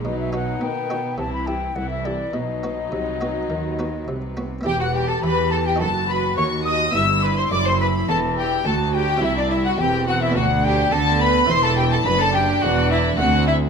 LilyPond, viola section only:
\new Staff \with { instrumentName = "Viola section" } { \time 4/4 \key e \minor \tempo 4 = 105 fis4 dis8 dis8 e4 e4 | fis2.~ fis8 r8 | g'2 fis'2 | e'2. fis'4 |
e'4 c'4 d'4 b4 | e'4 d'2 c'4 | }